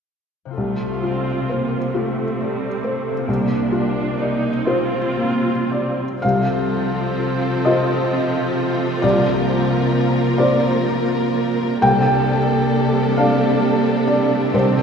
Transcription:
0.45 C3 C4
0.51 F4 A4
0.56 C2 C3 A3 F4
1.03 C4 F4
1.49 A#3 C5
1.94 A3 C4 F4
2.39 G3 A3
2.83 A3 C5
3.10 C3
3.14 D4
3.19 F4
3.23 A#4
3.28 C2 A#3 D4
3.72 D4 F4
4.18 D#4 D5
4.67 C4 F4 C5
5.17 A#3
5.72 D5
6.22 C2 C3 F3 C4 F4 A4 F5
6.72 A4
7.19 F4
7.65 F4 A4 C5 D#5
8.12 C4
8.57 A4
9.02 C2 C3 A#3 A#4 D5
9.49 C5
9.94 F4
10.38 F4 C5 D5
10.87 C4
11.81 C2 C3 G3 D4 A4 G5
12.28 A4
12.73 D4
13.17 D4 A4 D5 F5
13.62 A#3
14.07 A4 D5
14.53 C2 C3 D#3 C4 G4 C5

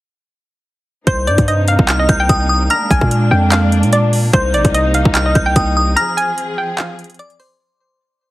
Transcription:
1.07 C2 C3 A#3 D#4 C5 G6, kick, closed hi-hat
1.27 G2 D5, closed hi-hat
1.38 G2, kick, closed hi-hat
1.48 D#5, closed hi-hat
1.68 F5, closed hi-hat
1.79 C2, kick
1.88 F6, clap, closed hi-hat
1.99 D#5
2.09 C2 G6, kick, closed hi-hat
2.20 G5
2.29 C2 D#6, kick, closed hi-hat
2.49 D#6
2.70 G#3 D4 A#5 F6, closed hi-hat
2.91 A#1 G#5, kick, closed hi-hat
3.01 A#2, kick
3.11 closed hi-hat
3.31 F2 G5
3.52 F5, clap, closed hi-hat
3.72 closed hi-hat
3.83 A#2, closed hi-hat
3.93 D5, closed hi-hat
4.13 open hi-hat
4.33 C2 C3 D#4 C5 G6, kick, closed hi-hat
4.54 A#1 D5, closed hi-hat
4.65 C2, kick, closed hi-hat
4.74 D#5, closed hi-hat
4.94 F5, closed hi-hat
5.05 C2, kick
5.15 F6, clap, closed hi-hat
5.26 D#5
5.35 C2 G6, kick, closed hi-hat
5.46 G5
5.56 C2 D#6, kick, closed hi-hat
5.77 D#6
5.96 F3 C4 G#4 A#5 F6, closed hi-hat
6.17 G#5, closed hi-hat
6.38 closed hi-hat
6.58 G5
6.78 F5, clap, closed hi-hat
6.99 closed hi-hat
7.04 closed hi-hat
7.10 closed hi-hat
7.14 closed hi-hat
7.19 D5 D6, closed hi-hat
7.30 closed hi-hat
7.40 C5 C6, open hi-hat

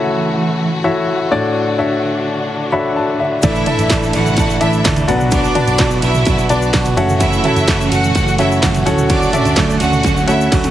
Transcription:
Already playing: C#3 E3 A3 E4 F#4 A4 C#5 E5
0.84 E4 F#4 A4 C#5 E5
1.31 A2 D3 D4 F#4 A4 C#5 D5
1.78 D4 F#4 A4 C#5 E5
2.72 D4 F#4 A4 C#5 E5 B5
2.96 A5
3.20 E5
3.43 A1 A2 D3 E3 A3 D4 E4 A4 D5 E5, kick, ride, shaker
3.55 shaker
3.66 E3 A3 D4 E4 A4 D5 E5, floor tom, ride
3.79 A1, ride, shaker
3.90 A1 A2 D3 E3 A3 D4 A4, kick, snare, clap, ride, shaker
4.03 shaker
4.13 A1 E3 A3 D4 F#4 A4 F#5, ride, shaker
4.26 floor tom, shaker
4.37 A1 E3 A3 D4 A4, kick, ride, shaker
4.50 shaker
4.61 A1 E3 A3 D4 E4 A4 D5 E5, ride, shaker
4.73 shaker
4.85 D2 A2 D3 E3 A3 D4 A4, kick, snare, clap, ride, shaker
4.96 floor tom, ride, shaker
5.08 B1 B2 F#3 B3 D4 F#4 B4 D5 F#5, ride, shaker
5.20 floor tom, shaker
5.31 D4 D5, kick, ride, shaker
5.45 shaker
5.55 B3 D4 F#4 B4 D5 A5, floor tom, ride
5.67 B1, ride, shaker
5.78 B1 B2 F#3 B3 D4 F#4, kick, snare, clap, ride, shaker
5.91 shaker
6.02 B1 B3 D4 E4 F#4 E5, ride, shaker
6.14 floor tom, shaker
6.25 B1 F#3 B3 D4 F#4, kick, ride, shaker
6.38 shaker
6.49 B1 B3 D4 F#4 B4 D5 A5, ride, shaker
6.62 shaker
6.73 B1 B2 F#3 B3 D4 F#4, kick, snare, clap, ride, shaker
6.85 floor tom, ride, shaker
6.97 F#1 F#2 C#3 E3 A3 C#4 F#4 A4 C#5 E5 F#5, ride, shaker
7.09 floor tom, shaker
7.20 E4 E5, kick, ride, shaker
7.33 shaker
7.44 E3 A3 C#4 F#4 A4 C#5 E5 A5, floor tom, ride
7.56 F#1, ride, shaker
7.68 F#1 F#2 C#3 E3 A3 C#4 F#4, kick, snare, clap, ride, shaker
7.81 shaker
7.91 F#1 E3 A3 C#4 F#4 F#5, ride, shaker
8.04 floor tom, shaker
8.14 F#1 E3 A3 C#4 F#4, kick, ride, shaker
8.28 shaker
8.38 F#1 E3 A3 C#4 E4 F#4 A4 C#5 E5 F#5, ride, shaker
8.52 shaker
8.62 F#1 F#2 C#3 E3 A3 C#4 F#4, kick, snare, clap, ride, shaker
8.74 floor tom, ride, shaker
8.85 D2 A2 D3 F#3 A3 C#4 F#4 A4 C#5 F#5, ride, shaker
8.98 floor tom, shaker
9.09 D4 D5, kick, ride, shaker
9.22 shaker
9.33 A3 C#4 F#4 A4 D5 E5, floor tom, ride, shaker
9.45 D2, ride, shaker
9.56 D2 D3 F#3 A3 C#4 F#4, kick, snare, clap, ride, shaker
9.70 shaker
9.80 D2 A3 C#4 F#4 F#5, ride, shaker
9.92 floor tom, shaker
10.03 D2 F#3 A3 C#4 F#4, kick, ride, shaker
10.17 shaker
10.27 D2 A3 C#4 E4 F#4 A4 C#5 E5 F#5, ride, shaker
10.41 shaker
10.52 D2 D3 F#3 A3 C#4 F#4, kick, snare, ride, shaker
10.64 high tom, ride, shaker

